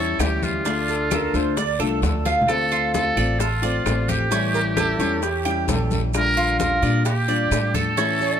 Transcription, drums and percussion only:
0.19 high bongo medium
0.19 low bongo medium
0.19 high conga soft
0.19 short guiro medium
0.19 claves medium
0.19 maracas medium
0.43 high conga medium
0.43 short guiro medium
0.43 maracas soft
0.65 high bongo medium
0.65 high conga soft
0.65 long guiro medium
0.65 maracas medium
0.88 high bongo soft
0.88 high conga soft
0.88 maracas soft
1.11 high bongo medium
1.11 high conga medium
1.11 short guiro medium
1.11 claves medium
1.11 maracas medium
1.34 high bongo soft
1.34 high conga soft
1.34 short guiro medium
1.34 maracas soft
1.57 high bongo medium
1.57 high conga soft
1.57 long guiro medium
1.57 maracas medium
1.80 high conga soft
1.80 claves medium
1.80 maracas soft
2.02 high bongo medium
2.02 low bongo medium
2.02 high conga medium
2.02 short guiro medium
2.02 maracas medium
2.25 high bongo soft
2.25 high conga medium
2.25 short guiro medium
2.25 maracas soft
2.42 low conga medium
2.48 high bongo medium
2.48 high conga soft
2.48 long guiro medium
2.48 claves medium
2.48 maracas medium
2.72 high conga soft
2.72 maracas soft
2.94 high bongo medium
2.94 high conga medium
2.94 short guiro medium
2.94 maracas medium
3.17 high conga soft
3.17 short guiro medium
3.17 claves medium
3.17 maracas soft
3.40 high bongo medium
3.40 high conga soft
3.40 long guiro medium
3.40 maracas medium
3.63 high conga soft
3.63 maracas soft
3.86 high bongo medium
3.86 low bongo medium
3.86 high conga soft
3.86 short guiro medium
3.86 claves medium
3.86 maracas medium
4.08 high conga medium
4.08 short guiro medium
4.08 maracas soft
4.31 high bongo medium
4.31 high conga soft
4.31 long guiro medium
4.31 maracas medium
4.54 high bongo soft
4.54 high conga soft
4.54 maracas soft
4.77 high bongo medium
4.77 high conga medium
4.77 short guiro medium
4.77 claves medium
4.77 maracas medium
5.00 high bongo soft
5.00 high conga soft
5.00 short guiro medium
5.00 maracas soft
5.22 high bongo medium
5.22 high conga soft
5.22 long guiro medium
5.22 maracas medium
5.45 high conga soft
5.45 claves medium
5.45 maracas soft
5.68 high bongo medium
5.68 low bongo medium
5.68 high conga medium
5.68 short guiro medium
5.68 maracas medium
5.91 high bongo soft
5.91 high conga medium
5.91 short guiro medium
5.91 maracas soft
6.14 high bongo medium
6.14 high conga soft
6.14 long guiro medium
6.14 claves medium
6.14 maracas medium
6.37 high conga soft
6.37 maracas soft
6.60 high bongo medium
6.60 high conga loud
6.60 short guiro medium
6.60 maracas medium
6.83 high conga soft
6.83 short guiro medium
6.83 claves medium
6.83 maracas soft
7.05 high bongo medium
7.05 high conga soft
7.05 long guiro medium
7.05 maracas medium
7.28 high conga soft
7.28 maracas soft
7.51 high bongo medium
7.51 low bongo medium
7.51 high conga soft
7.51 short guiro medium
7.51 claves medium
7.51 maracas medium
7.74 high conga medium
7.74 short guiro medium
7.74 maracas soft
7.97 high bongo medium
7.97 high conga soft
7.97 long guiro medium
7.97 maracas medium
8.20 high bongo soft
8.20 high conga soft
8.20 maracas soft

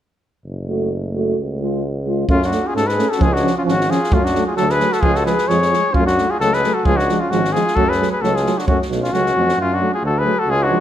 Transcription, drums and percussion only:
2.29 kick medium
2.42 snare soft
2.51 snare soft
2.77 snare soft
2.89 snare soft
2.99 snare soft
3.12 snare soft
3.21 kick medium
3.36 snare soft
3.47 snare soft
3.68 snare soft
3.81 snare soft
3.91 snare soft
4.04 snare soft
4.12 kick loud
4.26 snare soft
4.35 snare soft
4.57 snare soft
4.69 snare soft
4.80 snare soft
4.92 snare soft
5.03 kick medium
5.15 snare soft
5.26 snare soft
5.38 snare soft
5.50 snare soft
5.62 snare soft
5.73 snare soft
5.94 kick medium
6.07 snare soft
6.18 snare soft
6.41 snare soft
6.53 snare soft
6.64 snare soft
6.85 kick medium
6.99 snare soft
7.09 snare soft
7.32 snare soft
7.44 snare soft
7.55 snare soft
7.67 snare soft
7.77 kick medium
7.92 snare soft
8.02 snare soft
8.24 snare soft
8.36 snare soft
8.46 snare soft
8.59 snare soft
8.68 kick medium
8.82 snare soft
8.92 snare soft
9.04 snare soft
9.14 snare soft
9.26 snare soft
9.49 snare soft

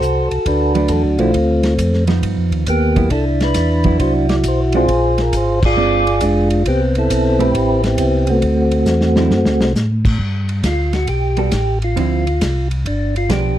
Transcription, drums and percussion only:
0.02 hi-hat pedal medium
0.31 ride soft
0.46 kick soft
0.46 ride medium
0.75 ride soft
0.88 kick soft
0.88 hi-hat pedal soft
0.88 ride medium
1.19 ride soft
1.34 kick soft
1.34 ride medium
1.63 snare medium
1.63 ride soft
1.78 kick soft
1.78 hi-hat pedal medium
1.78 ride medium
1.93 snare soft
2.07 snare soft
2.07 ride soft
2.23 kick soft
2.23 ride medium
2.52 ride soft
2.67 kick soft
2.67 hi-hat pedal soft
2.67 ride medium
2.96 kick soft
2.96 ride soft
3.10 kick soft
3.10 ride medium
3.41 snare medium
3.41 ride soft
3.54 kick soft
3.54 snare soft
3.54 hi-hat pedal medium
3.54 ride medium
3.84 kick medium
3.84 ride soft
4.00 kick soft
4.00 ride medium
4.29 snare medium
4.29 ride soft
4.44 kick soft
4.44 hi-hat pedal soft
4.44 ride medium
4.72 ride soft
4.88 kick soft
4.88 ride medium
5.18 snare soft
5.18 ride soft
5.33 kick soft
5.33 hi-hat pedal medium
5.33 ride medium
5.63 kick medium
5.63 crash medium
6.07 ride soft
6.21 kick soft
6.21 hi-hat pedal medium
6.21 ride medium
6.50 ride soft
6.66 kick soft
6.66 ride medium
6.95 ride soft
7.10 kick soft
7.10 hi-hat pedal medium
7.10 ride medium
7.40 ride soft
7.54 kick soft
7.54 ride medium
7.84 snare soft
7.84 ride soft
7.98 kick soft
7.98 hi-hat pedal soft
7.98 ride medium
8.27 ride soft
8.42 kick soft
8.42 ride medium
8.71 ride soft
8.86 snare medium
8.86 hi-hat pedal medium
9.01 snare medium
9.16 snare medium
9.31 snare medium
9.45 snare medium
9.61 snare medium
9.76 snare medium
9.76 hi-hat pedal medium
10.05 kick medium
10.05 crash medium
10.19 kick soft
10.49 ride soft
10.64 kick soft
10.64 snare medium
10.64 hi-hat pedal medium
10.64 ride medium
10.93 snare soft
10.93 ride soft
11.07 kick soft
11.07 ride medium
11.37 ride soft
11.52 kick soft
11.52 snare medium
11.52 hi-hat pedal medium
11.52 ride medium
11.82 ride soft
11.97 kick soft
11.97 ride medium
12.27 ride soft
12.41 kick soft
12.41 snare medium
12.41 hi-hat pedal medium
12.41 ride medium
12.71 ride soft
12.86 kick soft
12.86 ride medium
13.16 ride soft
13.30 kick soft
13.30 snare medium
13.30 hi-hat pedal soft
13.30 ride medium

